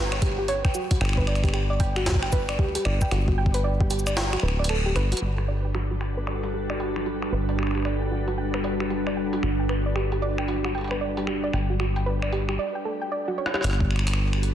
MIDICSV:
0, 0, Header, 1, 5, 480
1, 0, Start_track
1, 0, Key_signature, 1, "major"
1, 0, Tempo, 526316
1, 921, Time_signature, 4, 2, 24, 8
1, 13260, End_track
2, 0, Start_track
2, 0, Title_t, "Synth arpeggio sound"
2, 0, Program_c, 0, 84
2, 112, Note_on_c, 0, 73, 71
2, 198, Note_off_c, 0, 73, 0
2, 202, Note_on_c, 0, 67, 75
2, 330, Note_off_c, 0, 67, 0
2, 351, Note_on_c, 0, 67, 74
2, 429, Note_off_c, 0, 67, 0
2, 442, Note_on_c, 0, 73, 105
2, 519, Note_off_c, 0, 73, 0
2, 589, Note_on_c, 0, 79, 80
2, 676, Note_off_c, 0, 79, 0
2, 680, Note_on_c, 0, 66, 75
2, 819, Note_off_c, 0, 66, 0
2, 830, Note_on_c, 0, 66, 71
2, 877, Note_off_c, 0, 66, 0
2, 921, Note_on_c, 0, 79, 85
2, 1063, Note_off_c, 0, 79, 0
2, 1070, Note_on_c, 0, 71, 107
2, 1117, Note_off_c, 0, 71, 0
2, 1162, Note_on_c, 0, 74, 77
2, 1303, Note_off_c, 0, 74, 0
2, 1310, Note_on_c, 0, 67, 75
2, 1389, Note_off_c, 0, 67, 0
2, 1401, Note_on_c, 0, 67, 88
2, 1530, Note_off_c, 0, 67, 0
2, 1550, Note_on_c, 0, 74, 105
2, 1597, Note_off_c, 0, 74, 0
2, 1641, Note_on_c, 0, 79, 78
2, 1783, Note_off_c, 0, 79, 0
2, 1790, Note_on_c, 0, 66, 80
2, 1870, Note_off_c, 0, 66, 0
2, 1881, Note_on_c, 0, 66, 86
2, 1958, Note_off_c, 0, 66, 0
2, 2029, Note_on_c, 0, 79, 75
2, 2116, Note_off_c, 0, 79, 0
2, 2120, Note_on_c, 0, 71, 100
2, 2198, Note_off_c, 0, 71, 0
2, 2270, Note_on_c, 0, 74, 77
2, 2357, Note_off_c, 0, 74, 0
2, 2361, Note_on_c, 0, 67, 77
2, 2489, Note_off_c, 0, 67, 0
2, 2509, Note_on_c, 0, 67, 78
2, 2588, Note_off_c, 0, 67, 0
2, 2600, Note_on_c, 0, 74, 98
2, 2678, Note_off_c, 0, 74, 0
2, 2750, Note_on_c, 0, 79, 74
2, 2837, Note_off_c, 0, 79, 0
2, 2841, Note_on_c, 0, 66, 81
2, 2980, Note_off_c, 0, 66, 0
2, 2991, Note_on_c, 0, 66, 75
2, 3038, Note_off_c, 0, 66, 0
2, 3081, Note_on_c, 0, 79, 74
2, 3223, Note_off_c, 0, 79, 0
2, 3231, Note_on_c, 0, 71, 97
2, 3278, Note_off_c, 0, 71, 0
2, 3320, Note_on_c, 0, 74, 87
2, 3462, Note_off_c, 0, 74, 0
2, 3469, Note_on_c, 0, 67, 78
2, 3548, Note_off_c, 0, 67, 0
2, 3561, Note_on_c, 0, 67, 79
2, 3689, Note_off_c, 0, 67, 0
2, 3709, Note_on_c, 0, 74, 107
2, 3757, Note_off_c, 0, 74, 0
2, 3801, Note_on_c, 0, 79, 81
2, 3943, Note_off_c, 0, 79, 0
2, 3949, Note_on_c, 0, 66, 74
2, 4036, Note_off_c, 0, 66, 0
2, 4040, Note_on_c, 0, 71, 76
2, 4169, Note_off_c, 0, 71, 0
2, 4189, Note_on_c, 0, 74, 78
2, 4268, Note_off_c, 0, 74, 0
2, 4281, Note_on_c, 0, 69, 82
2, 4410, Note_off_c, 0, 69, 0
2, 4430, Note_on_c, 0, 67, 81
2, 4509, Note_off_c, 0, 67, 0
2, 4522, Note_on_c, 0, 71, 104
2, 4650, Note_off_c, 0, 71, 0
2, 4671, Note_on_c, 0, 66, 73
2, 4718, Note_off_c, 0, 66, 0
2, 4761, Note_on_c, 0, 67, 77
2, 4890, Note_off_c, 0, 67, 0
2, 4910, Note_on_c, 0, 67, 72
2, 4989, Note_off_c, 0, 67, 0
2, 5001, Note_on_c, 0, 74, 95
2, 5078, Note_off_c, 0, 74, 0
2, 5150, Note_on_c, 0, 79, 76
2, 5237, Note_off_c, 0, 79, 0
2, 5241, Note_on_c, 0, 66, 86
2, 5379, Note_off_c, 0, 66, 0
2, 5390, Note_on_c, 0, 66, 79
2, 5437, Note_off_c, 0, 66, 0
2, 5482, Note_on_c, 0, 79, 73
2, 5623, Note_off_c, 0, 79, 0
2, 5630, Note_on_c, 0, 71, 98
2, 5677, Note_off_c, 0, 71, 0
2, 5721, Note_on_c, 0, 74, 77
2, 5862, Note_off_c, 0, 74, 0
2, 5870, Note_on_c, 0, 67, 71
2, 5949, Note_off_c, 0, 67, 0
2, 5961, Note_on_c, 0, 67, 73
2, 6090, Note_off_c, 0, 67, 0
2, 6110, Note_on_c, 0, 74, 91
2, 6157, Note_off_c, 0, 74, 0
2, 6202, Note_on_c, 0, 79, 81
2, 6343, Note_off_c, 0, 79, 0
2, 6351, Note_on_c, 0, 66, 75
2, 6430, Note_off_c, 0, 66, 0
2, 6441, Note_on_c, 0, 66, 70
2, 6518, Note_off_c, 0, 66, 0
2, 6590, Note_on_c, 0, 79, 71
2, 6677, Note_off_c, 0, 79, 0
2, 6681, Note_on_c, 0, 71, 99
2, 6758, Note_off_c, 0, 71, 0
2, 6830, Note_on_c, 0, 74, 75
2, 6917, Note_off_c, 0, 74, 0
2, 6921, Note_on_c, 0, 67, 74
2, 7049, Note_off_c, 0, 67, 0
2, 7070, Note_on_c, 0, 67, 78
2, 7149, Note_off_c, 0, 67, 0
2, 7161, Note_on_c, 0, 74, 96
2, 7238, Note_off_c, 0, 74, 0
2, 7309, Note_on_c, 0, 79, 78
2, 7396, Note_off_c, 0, 79, 0
2, 7401, Note_on_c, 0, 66, 73
2, 7539, Note_off_c, 0, 66, 0
2, 7550, Note_on_c, 0, 66, 77
2, 7597, Note_off_c, 0, 66, 0
2, 7642, Note_on_c, 0, 79, 79
2, 7783, Note_off_c, 0, 79, 0
2, 7790, Note_on_c, 0, 71, 94
2, 7837, Note_off_c, 0, 71, 0
2, 7882, Note_on_c, 0, 74, 74
2, 8023, Note_off_c, 0, 74, 0
2, 8031, Note_on_c, 0, 67, 75
2, 8109, Note_off_c, 0, 67, 0
2, 8122, Note_on_c, 0, 67, 81
2, 8250, Note_off_c, 0, 67, 0
2, 8270, Note_on_c, 0, 74, 100
2, 8318, Note_off_c, 0, 74, 0
2, 8361, Note_on_c, 0, 79, 73
2, 8503, Note_off_c, 0, 79, 0
2, 8511, Note_on_c, 0, 66, 74
2, 8591, Note_off_c, 0, 66, 0
2, 8602, Note_on_c, 0, 66, 82
2, 8678, Note_off_c, 0, 66, 0
2, 8750, Note_on_c, 0, 79, 73
2, 8837, Note_off_c, 0, 79, 0
2, 8841, Note_on_c, 0, 71, 98
2, 8918, Note_off_c, 0, 71, 0
2, 8991, Note_on_c, 0, 74, 77
2, 9077, Note_off_c, 0, 74, 0
2, 9081, Note_on_c, 0, 67, 84
2, 9209, Note_off_c, 0, 67, 0
2, 9230, Note_on_c, 0, 67, 81
2, 9309, Note_off_c, 0, 67, 0
2, 9321, Note_on_c, 0, 74, 101
2, 9398, Note_off_c, 0, 74, 0
2, 9470, Note_on_c, 0, 79, 80
2, 9557, Note_off_c, 0, 79, 0
2, 9561, Note_on_c, 0, 66, 81
2, 9699, Note_off_c, 0, 66, 0
2, 9710, Note_on_c, 0, 66, 74
2, 9757, Note_off_c, 0, 66, 0
2, 9802, Note_on_c, 0, 79, 71
2, 9943, Note_off_c, 0, 79, 0
2, 9950, Note_on_c, 0, 71, 95
2, 9998, Note_off_c, 0, 71, 0
2, 10041, Note_on_c, 0, 74, 76
2, 10182, Note_off_c, 0, 74, 0
2, 10190, Note_on_c, 0, 67, 76
2, 10269, Note_off_c, 0, 67, 0
2, 10281, Note_on_c, 0, 67, 76
2, 10410, Note_off_c, 0, 67, 0
2, 10429, Note_on_c, 0, 74, 93
2, 10477, Note_off_c, 0, 74, 0
2, 10520, Note_on_c, 0, 79, 82
2, 10662, Note_off_c, 0, 79, 0
2, 10669, Note_on_c, 0, 66, 75
2, 10750, Note_off_c, 0, 66, 0
2, 10761, Note_on_c, 0, 66, 76
2, 10838, Note_off_c, 0, 66, 0
2, 10909, Note_on_c, 0, 79, 75
2, 10996, Note_off_c, 0, 79, 0
2, 11000, Note_on_c, 0, 71, 101
2, 11078, Note_off_c, 0, 71, 0
2, 11149, Note_on_c, 0, 74, 81
2, 11236, Note_off_c, 0, 74, 0
2, 11241, Note_on_c, 0, 67, 77
2, 11369, Note_off_c, 0, 67, 0
2, 11389, Note_on_c, 0, 67, 82
2, 11468, Note_off_c, 0, 67, 0
2, 11481, Note_on_c, 0, 74, 97
2, 11558, Note_off_c, 0, 74, 0
2, 11630, Note_on_c, 0, 79, 73
2, 11717, Note_off_c, 0, 79, 0
2, 11721, Note_on_c, 0, 69, 71
2, 11849, Note_off_c, 0, 69, 0
2, 11870, Note_on_c, 0, 79, 71
2, 11917, Note_off_c, 0, 79, 0
2, 11962, Note_on_c, 0, 74, 77
2, 12103, Note_off_c, 0, 74, 0
2, 12110, Note_on_c, 0, 66, 75
2, 12197, Note_off_c, 0, 66, 0
2, 12201, Note_on_c, 0, 73, 76
2, 12330, Note_off_c, 0, 73, 0
2, 12349, Note_on_c, 0, 67, 94
2, 12428, Note_off_c, 0, 67, 0
2, 13260, End_track
3, 0, Start_track
3, 0, Title_t, "Ambient pad"
3, 0, Program_c, 1, 92
3, 4759, Note_on_c, 1, 69, 74
3, 4759, Note_on_c, 1, 71, 87
3, 4760, Note_on_c, 1, 55, 83
3, 4760, Note_on_c, 1, 62, 77
3, 4760, Note_on_c, 1, 66, 72
3, 11444, Note_off_c, 1, 55, 0
3, 11444, Note_off_c, 1, 62, 0
3, 11444, Note_off_c, 1, 66, 0
3, 11444, Note_off_c, 1, 69, 0
3, 11444, Note_off_c, 1, 71, 0
3, 12441, Note_on_c, 1, 62, 79
3, 12441, Note_on_c, 1, 71, 94
3, 12442, Note_on_c, 1, 55, 84
3, 12442, Note_on_c, 1, 66, 81
3, 12442, Note_on_c, 1, 69, 75
3, 13260, Note_off_c, 1, 55, 0
3, 13260, Note_off_c, 1, 62, 0
3, 13260, Note_off_c, 1, 66, 0
3, 13260, Note_off_c, 1, 69, 0
3, 13260, Note_off_c, 1, 71, 0
3, 13260, End_track
4, 0, Start_track
4, 0, Title_t, "Acid bass"
4, 0, Program_c, 2, 38
4, 0, Note_on_c, 2, 31, 101
4, 627, Note_off_c, 2, 31, 0
4, 922, Note_on_c, 2, 31, 100
4, 2361, Note_on_c, 2, 38, 96
4, 2375, Note_off_c, 2, 31, 0
4, 2533, Note_off_c, 2, 38, 0
4, 2602, Note_on_c, 2, 31, 81
4, 2773, Note_off_c, 2, 31, 0
4, 2841, Note_on_c, 2, 31, 97
4, 3986, Note_off_c, 2, 31, 0
4, 4041, Note_on_c, 2, 26, 94
4, 4516, Note_off_c, 2, 26, 0
4, 4521, Note_on_c, 2, 31, 94
4, 4693, Note_off_c, 2, 31, 0
4, 4760, Note_on_c, 2, 31, 85
4, 6663, Note_off_c, 2, 31, 0
4, 6680, Note_on_c, 2, 31, 88
4, 8583, Note_off_c, 2, 31, 0
4, 8601, Note_on_c, 2, 31, 88
4, 10503, Note_off_c, 2, 31, 0
4, 10521, Note_on_c, 2, 31, 90
4, 11481, Note_off_c, 2, 31, 0
4, 12442, Note_on_c, 2, 31, 101
4, 13260, Note_off_c, 2, 31, 0
4, 13260, End_track
5, 0, Start_track
5, 0, Title_t, "Drums"
5, 110, Note_on_c, 9, 26, 79
5, 200, Note_on_c, 9, 42, 88
5, 201, Note_off_c, 9, 26, 0
5, 202, Note_on_c, 9, 36, 115
5, 291, Note_off_c, 9, 42, 0
5, 293, Note_off_c, 9, 36, 0
5, 440, Note_on_c, 9, 42, 72
5, 531, Note_off_c, 9, 42, 0
5, 589, Note_on_c, 9, 26, 52
5, 590, Note_on_c, 9, 36, 95
5, 680, Note_on_c, 9, 69, 78
5, 681, Note_off_c, 9, 26, 0
5, 681, Note_off_c, 9, 36, 0
5, 771, Note_off_c, 9, 69, 0
5, 829, Note_on_c, 9, 42, 91
5, 830, Note_on_c, 9, 36, 115
5, 920, Note_off_c, 9, 42, 0
5, 920, Note_on_c, 9, 26, 76
5, 921, Note_off_c, 9, 36, 0
5, 958, Note_off_c, 9, 26, 0
5, 958, Note_on_c, 9, 26, 60
5, 996, Note_off_c, 9, 26, 0
5, 996, Note_on_c, 9, 26, 49
5, 1033, Note_off_c, 9, 26, 0
5, 1033, Note_on_c, 9, 26, 41
5, 1070, Note_on_c, 9, 36, 103
5, 1124, Note_off_c, 9, 26, 0
5, 1160, Note_on_c, 9, 26, 51
5, 1160, Note_on_c, 9, 42, 23
5, 1161, Note_off_c, 9, 36, 0
5, 1235, Note_off_c, 9, 26, 0
5, 1235, Note_on_c, 9, 26, 42
5, 1240, Note_off_c, 9, 42, 0
5, 1240, Note_on_c, 9, 42, 31
5, 1310, Note_off_c, 9, 26, 0
5, 1310, Note_on_c, 9, 26, 34
5, 1310, Note_on_c, 9, 36, 112
5, 1321, Note_off_c, 9, 42, 0
5, 1321, Note_on_c, 9, 42, 40
5, 1355, Note_off_c, 9, 26, 0
5, 1355, Note_on_c, 9, 26, 27
5, 1401, Note_off_c, 9, 26, 0
5, 1401, Note_on_c, 9, 26, 57
5, 1402, Note_off_c, 9, 36, 0
5, 1413, Note_off_c, 9, 42, 0
5, 1492, Note_off_c, 9, 26, 0
5, 1640, Note_on_c, 9, 42, 78
5, 1642, Note_on_c, 9, 36, 98
5, 1731, Note_off_c, 9, 42, 0
5, 1733, Note_off_c, 9, 36, 0
5, 1790, Note_on_c, 9, 26, 83
5, 1881, Note_off_c, 9, 26, 0
5, 1881, Note_on_c, 9, 38, 112
5, 1881, Note_on_c, 9, 42, 92
5, 1882, Note_on_c, 9, 36, 50
5, 1931, Note_off_c, 9, 36, 0
5, 1931, Note_on_c, 9, 36, 70
5, 1962, Note_off_c, 9, 36, 0
5, 1962, Note_on_c, 9, 36, 84
5, 1972, Note_off_c, 9, 38, 0
5, 1972, Note_off_c, 9, 42, 0
5, 2030, Note_on_c, 9, 26, 53
5, 2053, Note_off_c, 9, 36, 0
5, 2121, Note_off_c, 9, 26, 0
5, 2121, Note_on_c, 9, 42, 80
5, 2121, Note_on_c, 9, 69, 88
5, 2122, Note_on_c, 9, 36, 102
5, 2212, Note_off_c, 9, 42, 0
5, 2212, Note_off_c, 9, 69, 0
5, 2213, Note_off_c, 9, 36, 0
5, 2269, Note_on_c, 9, 26, 54
5, 2361, Note_off_c, 9, 26, 0
5, 2362, Note_on_c, 9, 36, 114
5, 2453, Note_off_c, 9, 36, 0
5, 2509, Note_on_c, 9, 42, 89
5, 2600, Note_off_c, 9, 42, 0
5, 2600, Note_on_c, 9, 26, 78
5, 2692, Note_off_c, 9, 26, 0
5, 2749, Note_on_c, 9, 69, 80
5, 2750, Note_on_c, 9, 36, 97
5, 2840, Note_off_c, 9, 69, 0
5, 2840, Note_on_c, 9, 26, 53
5, 2840, Note_on_c, 9, 42, 50
5, 2842, Note_off_c, 9, 36, 0
5, 2931, Note_off_c, 9, 26, 0
5, 2931, Note_off_c, 9, 42, 0
5, 2990, Note_on_c, 9, 36, 117
5, 3082, Note_off_c, 9, 36, 0
5, 3156, Note_on_c, 9, 36, 100
5, 3230, Note_on_c, 9, 42, 75
5, 3247, Note_off_c, 9, 36, 0
5, 3321, Note_off_c, 9, 42, 0
5, 3470, Note_on_c, 9, 36, 109
5, 3561, Note_on_c, 9, 42, 88
5, 3561, Note_on_c, 9, 69, 37
5, 3562, Note_off_c, 9, 36, 0
5, 3641, Note_off_c, 9, 69, 0
5, 3641, Note_on_c, 9, 69, 48
5, 3653, Note_off_c, 9, 42, 0
5, 3710, Note_off_c, 9, 69, 0
5, 3710, Note_on_c, 9, 26, 58
5, 3710, Note_on_c, 9, 69, 63
5, 3721, Note_off_c, 9, 69, 0
5, 3721, Note_on_c, 9, 69, 65
5, 3801, Note_off_c, 9, 26, 0
5, 3801, Note_on_c, 9, 38, 115
5, 3801, Note_on_c, 9, 42, 85
5, 3812, Note_off_c, 9, 69, 0
5, 3892, Note_off_c, 9, 38, 0
5, 3892, Note_off_c, 9, 42, 0
5, 3950, Note_on_c, 9, 26, 56
5, 4010, Note_off_c, 9, 26, 0
5, 4010, Note_on_c, 9, 26, 45
5, 4090, Note_off_c, 9, 26, 0
5, 4090, Note_on_c, 9, 26, 36
5, 4181, Note_off_c, 9, 26, 0
5, 4234, Note_on_c, 9, 42, 95
5, 4280, Note_on_c, 9, 26, 86
5, 4326, Note_off_c, 9, 42, 0
5, 4371, Note_off_c, 9, 26, 0
5, 4521, Note_on_c, 9, 26, 52
5, 4521, Note_on_c, 9, 42, 53
5, 4612, Note_off_c, 9, 26, 0
5, 4612, Note_off_c, 9, 42, 0
5, 4669, Note_on_c, 9, 42, 79
5, 4714, Note_off_c, 9, 42, 0
5, 4714, Note_on_c, 9, 42, 85
5, 4761, Note_off_c, 9, 42, 0
5, 4761, Note_on_c, 9, 42, 76
5, 4852, Note_off_c, 9, 42, 0
5, 4909, Note_on_c, 9, 26, 55
5, 5001, Note_off_c, 9, 26, 0
5, 5240, Note_on_c, 9, 26, 78
5, 5240, Note_on_c, 9, 42, 88
5, 5331, Note_off_c, 9, 26, 0
5, 5331, Note_off_c, 9, 42, 0
5, 5480, Note_on_c, 9, 26, 51
5, 5480, Note_on_c, 9, 42, 49
5, 5571, Note_off_c, 9, 26, 0
5, 5571, Note_off_c, 9, 42, 0
5, 5720, Note_on_c, 9, 26, 55
5, 5811, Note_off_c, 9, 26, 0
5, 5868, Note_on_c, 9, 42, 78
5, 5959, Note_off_c, 9, 42, 0
5, 6108, Note_on_c, 9, 26, 80
5, 6200, Note_off_c, 9, 26, 0
5, 6200, Note_on_c, 9, 42, 92
5, 6291, Note_off_c, 9, 42, 0
5, 6349, Note_on_c, 9, 26, 53
5, 6440, Note_off_c, 9, 26, 0
5, 6440, Note_on_c, 9, 42, 74
5, 6531, Note_off_c, 9, 42, 0
5, 6588, Note_on_c, 9, 26, 51
5, 6680, Note_off_c, 9, 26, 0
5, 6829, Note_on_c, 9, 42, 96
5, 6920, Note_off_c, 9, 42, 0
5, 6920, Note_on_c, 9, 26, 75
5, 6957, Note_off_c, 9, 26, 0
5, 6957, Note_on_c, 9, 26, 61
5, 6994, Note_off_c, 9, 26, 0
5, 6994, Note_on_c, 9, 26, 49
5, 7032, Note_off_c, 9, 26, 0
5, 7032, Note_on_c, 9, 26, 39
5, 7069, Note_off_c, 9, 26, 0
5, 7069, Note_on_c, 9, 26, 31
5, 7092, Note_off_c, 9, 26, 0
5, 7092, Note_on_c, 9, 26, 26
5, 7114, Note_off_c, 9, 26, 0
5, 7114, Note_on_c, 9, 26, 20
5, 7136, Note_off_c, 9, 26, 0
5, 7136, Note_on_c, 9, 26, 18
5, 7160, Note_off_c, 9, 26, 0
5, 7160, Note_on_c, 9, 26, 51
5, 7160, Note_on_c, 9, 42, 53
5, 7251, Note_off_c, 9, 26, 0
5, 7251, Note_off_c, 9, 42, 0
5, 7548, Note_on_c, 9, 42, 79
5, 7639, Note_off_c, 9, 42, 0
5, 7788, Note_on_c, 9, 26, 79
5, 7879, Note_off_c, 9, 26, 0
5, 7880, Note_on_c, 9, 42, 97
5, 7971, Note_off_c, 9, 42, 0
5, 8029, Note_on_c, 9, 26, 50
5, 8120, Note_off_c, 9, 26, 0
5, 8120, Note_on_c, 9, 42, 79
5, 8211, Note_off_c, 9, 42, 0
5, 8269, Note_on_c, 9, 26, 52
5, 8360, Note_off_c, 9, 26, 0
5, 8509, Note_on_c, 9, 42, 89
5, 8600, Note_off_c, 9, 42, 0
5, 8600, Note_on_c, 9, 26, 69
5, 8691, Note_off_c, 9, 26, 0
5, 8840, Note_on_c, 9, 26, 50
5, 8840, Note_on_c, 9, 42, 53
5, 8931, Note_off_c, 9, 26, 0
5, 8931, Note_off_c, 9, 42, 0
5, 9080, Note_on_c, 9, 26, 49
5, 9172, Note_off_c, 9, 26, 0
5, 9229, Note_on_c, 9, 42, 80
5, 9320, Note_off_c, 9, 42, 0
5, 9469, Note_on_c, 9, 26, 75
5, 9560, Note_off_c, 9, 26, 0
5, 9560, Note_on_c, 9, 42, 97
5, 9651, Note_off_c, 9, 42, 0
5, 9708, Note_on_c, 9, 26, 52
5, 9800, Note_off_c, 9, 26, 0
5, 9801, Note_on_c, 9, 42, 36
5, 9830, Note_off_c, 9, 42, 0
5, 9830, Note_on_c, 9, 42, 43
5, 9860, Note_off_c, 9, 42, 0
5, 9860, Note_on_c, 9, 42, 53
5, 9890, Note_off_c, 9, 42, 0
5, 9890, Note_on_c, 9, 42, 57
5, 9919, Note_off_c, 9, 42, 0
5, 9919, Note_on_c, 9, 42, 66
5, 9949, Note_on_c, 9, 26, 50
5, 10010, Note_off_c, 9, 42, 0
5, 10040, Note_off_c, 9, 26, 0
5, 10189, Note_on_c, 9, 42, 92
5, 10280, Note_off_c, 9, 42, 0
5, 10280, Note_on_c, 9, 26, 74
5, 10371, Note_off_c, 9, 26, 0
5, 10520, Note_on_c, 9, 26, 46
5, 10520, Note_on_c, 9, 42, 48
5, 10611, Note_off_c, 9, 26, 0
5, 10611, Note_off_c, 9, 42, 0
5, 10760, Note_on_c, 9, 26, 50
5, 10851, Note_off_c, 9, 26, 0
5, 10909, Note_on_c, 9, 42, 73
5, 11000, Note_off_c, 9, 42, 0
5, 11148, Note_on_c, 9, 26, 71
5, 11240, Note_off_c, 9, 26, 0
5, 11240, Note_on_c, 9, 42, 87
5, 11331, Note_off_c, 9, 42, 0
5, 11389, Note_on_c, 9, 26, 48
5, 11480, Note_off_c, 9, 26, 0
5, 12275, Note_on_c, 9, 37, 58
5, 12350, Note_off_c, 9, 37, 0
5, 12350, Note_on_c, 9, 37, 66
5, 12362, Note_off_c, 9, 37, 0
5, 12362, Note_on_c, 9, 37, 53
5, 12412, Note_off_c, 9, 37, 0
5, 12412, Note_on_c, 9, 37, 45
5, 12442, Note_off_c, 9, 37, 0
5, 12442, Note_on_c, 9, 37, 36
5, 12442, Note_on_c, 9, 42, 84
5, 12492, Note_off_c, 9, 37, 0
5, 12492, Note_on_c, 9, 37, 30
5, 12522, Note_off_c, 9, 37, 0
5, 12522, Note_on_c, 9, 37, 26
5, 12533, Note_off_c, 9, 42, 0
5, 12590, Note_on_c, 9, 36, 110
5, 12613, Note_off_c, 9, 37, 0
5, 12681, Note_off_c, 9, 36, 0
5, 12682, Note_on_c, 9, 26, 29
5, 12731, Note_off_c, 9, 26, 0
5, 12731, Note_on_c, 9, 26, 36
5, 12761, Note_off_c, 9, 26, 0
5, 12761, Note_on_c, 9, 26, 41
5, 12830, Note_off_c, 9, 26, 0
5, 12830, Note_on_c, 9, 26, 45
5, 12830, Note_on_c, 9, 42, 88
5, 12841, Note_off_c, 9, 26, 0
5, 12841, Note_on_c, 9, 26, 51
5, 12891, Note_off_c, 9, 26, 0
5, 12891, Note_on_c, 9, 26, 54
5, 12921, Note_off_c, 9, 42, 0
5, 12982, Note_off_c, 9, 26, 0
5, 13070, Note_on_c, 9, 26, 39
5, 13161, Note_off_c, 9, 26, 0
5, 13161, Note_on_c, 9, 42, 52
5, 13252, Note_off_c, 9, 42, 0
5, 13260, End_track
0, 0, End_of_file